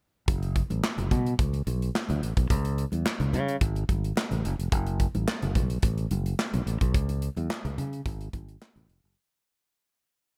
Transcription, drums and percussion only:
0.28 kick loud
0.28 closed hi-hat medium
0.28 muted conga soft
0.43 closed hi-hat soft
0.56 kick medium
0.56 closed hi-hat medium
0.70 closed hi-hat soft
0.70 high conga medium
0.83 snare loud
0.83 clap medium
0.83 muted conga soft
0.98 closed hi-hat soft
0.98 muted conga soft
0.98 low conga medium
1.11 kick medium
1.11 closed hi-hat medium
1.11 high conga medium
1.11 low conga medium
1.26 closed hi-hat medium
1.39 kick loud
1.39 closed hi-hat medium
1.53 closed hi-hat soft
1.53 muted conga soft
1.67 closed hi-hat medium
1.67 high conga medium
1.82 closed hi-hat soft
1.95 snare loud
1.95 clap medium
2.09 closed hi-hat soft
2.09 muted conga soft
2.09 high conga soft
2.09 low conga medium
2.23 closed hi-hat medium
2.37 kick medium
2.37 closed hi-hat medium
2.50 kick loud
2.50 closed hi-hat loud
2.50 muted conga soft
2.65 closed hi-hat medium
2.78 closed hi-hat medium
2.92 closed hi-hat medium
2.92 high conga medium
3.06 snare loud
3.06 clap loud
3.20 closed hi-hat soft
3.20 muted conga soft
3.20 low conga medium
3.33 closed hi-hat medium
3.33 high conga medium
3.33 low conga medium
3.48 closed hi-hat medium
3.61 kick loud
3.61 closed hi-hat medium
3.61 muted conga soft
3.75 closed hi-hat soft
3.75 muted conga soft
3.89 kick medium
3.89 closed hi-hat medium
3.89 high conga medium
4.04 closed hi-hat medium
4.16 snare loud
4.16 clap medium
4.16 muted conga soft
4.31 closed hi-hat soft
4.31 high conga soft
4.31 low conga medium
4.45 closed hi-hat medium
4.60 closed hi-hat medium
4.72 kick loud
4.72 closed hi-hat loud
4.72 muted conga soft
4.87 closed hi-hat soft
4.87 muted conga soft
5.00 kick medium
5.00 closed hi-hat medium
5.15 closed hi-hat soft
5.15 high conga medium
5.28 snare loud
5.28 clap loud
5.42 closed hi-hat soft
5.42 muted conga soft
5.42 low conga medium
5.55 kick medium
5.55 closed hi-hat medium
5.55 high conga medium
5.55 low conga medium
5.70 closed hi-hat medium
5.82 kick loud
5.82 closed hi-hat medium
5.98 closed hi-hat soft
5.98 muted conga soft
6.11 closed hi-hat medium
6.11 high conga medium
6.26 closed hi-hat medium
6.39 snare loud
6.39 clap medium
6.54 closed hi-hat medium
6.54 muted conga soft
6.54 high conga soft
6.54 low conga medium
6.67 closed hi-hat medium
6.81 kick medium
6.81 closed hi-hat medium
6.94 kick loud
6.94 closed hi-hat medium
7.09 closed hi-hat medium
7.09 muted conga soft
7.22 closed hi-hat medium
7.37 closed hi-hat soft
7.37 high conga medium
7.50 snare loud
7.50 clap medium
7.65 closed hi-hat soft
7.65 muted conga soft
7.65 low conga medium
7.78 closed hi-hat medium
7.78 high conga medium
7.78 low conga medium
7.93 closed hi-hat medium
8.06 kick loud
8.06 closed hi-hat medium
8.21 closed hi-hat soft
8.33 kick medium
8.33 closed hi-hat medium
8.33 high conga medium
8.49 closed hi-hat soft
8.62 snare loud
8.62 clap medium
8.76 closed hi-hat soft
8.76 muted conga soft
8.76 high conga soft
8.76 low conga medium
8.89 closed hi-hat medium
9.04 closed hi-hat medium

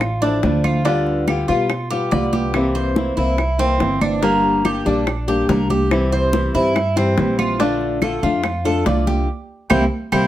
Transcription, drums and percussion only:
0.01 high bongo medium
0.01 high conga soft
0.01 claves medium
0.22 high bongo soft
0.22 high conga soft
0.43 high bongo medium
0.43 low bongo medium
0.43 high conga medium
0.64 high conga medium
0.64 claves medium
0.85 high bongo medium
0.85 high conga soft
1.07 high conga soft
1.28 high bongo soft
1.28 high conga medium
1.28 claves medium
1.49 high bongo soft
1.70 high bongo medium
1.70 high conga soft
1.70 claves medium
1.91 high bongo soft
1.91 high conga soft
2.12 high bongo medium
2.12 low bongo medium
2.12 high conga medium
2.33 high bongo soft
2.33 high conga medium
2.54 high bongo medium
2.54 high conga soft
2.54 claves medium
2.75 high bongo soft
2.75 high conga soft
2.96 high bongo medium
2.96 high conga medium
3.17 high bongo soft
3.38 high bongo medium
3.38 high conga soft
3.38 claves medium
3.59 high bongo soft
3.59 high conga soft
3.80 high bongo medium
3.80 low bongo medium
3.80 high conga medium
4.01 high conga medium
4.01 claves medium
4.23 high bongo medium
4.23 high conga soft
4.44 high conga soft
4.65 high bongo medium
4.65 high conga medium
4.65 claves medium
4.86 high bongo soft
5.07 high bongo medium
5.07 high conga soft
5.07 claves medium
5.28 high bongo soft
5.28 high conga soft
5.49 high bongo medium
5.49 low bongo medium
5.49 high conga medium
5.70 high bongo soft
5.70 high conga medium
5.91 high bongo medium
5.91 high conga soft
5.91 claves medium
6.12 high bongo soft
6.12 high conga soft
6.33 high bongo medium
6.33 high conga medium
6.55 high bongo soft
6.76 high bongo medium
6.76 high conga soft
6.76 claves medium
6.96 high bongo soft
6.96 high conga soft
7.18 high bongo medium
7.18 low bongo medium
7.18 high conga medium
7.39 high conga medium
7.39 claves medium
7.60 high bongo medium
7.60 high conga soft
7.81 high conga soft
8.02 high bongo medium
8.02 high conga medium
8.02 claves medium
8.23 high bongo soft
8.44 high bongo medium
8.44 high conga soft
8.44 claves medium
8.65 high bongo soft
8.65 high conga soft
8.86 high bongo medium
8.86 low bongo medium
8.86 high conga medium
9.07 high bongo soft
9.07 high conga medium
9.70 low bongo medium
9.70 high conga medium
9.70 claves loud
10.12 low bongo medium
10.12 high conga medium
10.12 claves medium

